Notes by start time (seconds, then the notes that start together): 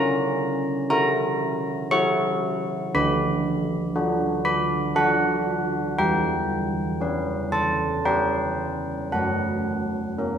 Already playing: C#4 A#5
0.90 E4 F#4 A#5
1.91 E4 F#4 C#6
2.94 D3 B5
3.96 D4 F#4
4.45 B5
4.95 D4 F#4 F#5
5.99 E3 G5
7.01 C#4 B4
7.52 A5
8.05 C#4 B4 G5
9.12 F#3 F#5
10.18 C#4 A#4